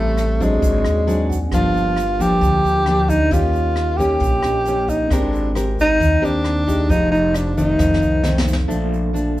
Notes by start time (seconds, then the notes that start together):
Already playing: A1 A2 G3 A3 C4 E4 G4 A4 E5
0.17 cross-stick, closed hi-hat, shaker
0.40 F#3 G#3 C4 D4, kick, closed hi-hat, shaker
0.59 G#1 C4 F#4, kick, closed hi-hat
0.63 G#2 G#4 D5, shaker
0.85 D#2, cross-stick, closed hi-hat, shaker
1.07 F#3 C4 D4 G#5, closed hi-hat, shaker
1.29 F#5, kick, closed hi-hat, shaker
1.49 G1 D4 G4, kick, cross-stick, closed hi-hat
1.53 G2 F3 A#3 D4 F4 A#4 F5, shaker
1.74 closed hi-hat, shaker
1.96 cross-stick, closed hi-hat, shaker
2.19 F3 A#3 D4 G4, kick, closed hi-hat, shaker
2.41 D2 D3, kick, closed hi-hat, shaker
2.64 D2, closed hi-hat, shaker
2.86 F3 A#3 D4, cross-stick, closed hi-hat
3.09 D4 D#4 G4 A#4 D5, kick, closed hi-hat, shaker
3.31 D#2 D#3 A#3 C#4 F4 G4 A#4, kick, closed hi-hat, shaker
3.36 D#5
3.53 closed hi-hat, shaker
3.76 cross-stick, closed hi-hat
3.97 A#3 C#4 G4, kick, closed hi-hat, shaker
4.20 A#1 A#2, kick, closed hi-hat, shaker
4.43 A#1 C#4 G4 A#4, cross-stick, closed hi-hat, shaker
4.47 D#5
4.65 A#3 C#4 G4, closed hi-hat, shaker
4.88 D#4, kick, closed hi-hat, shaker
5.07 G#1 C4 A#4, kick, cross-stick, closed hi-hat
5.11 G#3 C4 D4 G4 A#4 G5, shaker
5.33 closed hi-hat, shaker
5.55 C4 G4 A#4, cross-stick, closed hi-hat, shaker
5.78 D#4, kick, closed hi-hat, shaker
6.00 D#2 D#3, kick, closed hi-hat, shaker
6.22 D#2 C4 D4 G4 A#4, closed hi-hat, shaker
6.44 cross-stick, closed hi-hat
6.66 G#3 D#4 G4, kick, closed hi-hat, shaker
6.86 F1 F3 D#4 G4, kick, closed hi-hat
6.91 F5, shaker
7.11 D#4, closed hi-hat, shaker
7.34 D4, cross-stick, closed hi-hat, shaker
7.57 D#3 A3 C4 D#4, kick, closed hi-hat, shaker
7.76 F1 F2 D#4 A4 C5, kick, snare, shaker
7.82 F5
7.94 snare
8.02 C2, shaker
8.24 D#3 A3 C4, snare, shaker
8.38 snare
8.48 shaker
8.53 snare
8.67 A#1 A#2 F3 A3 A#3 D4 A4, shaker
8.73 F5
8.93 shaker
9.13 F3 A3 D4, shaker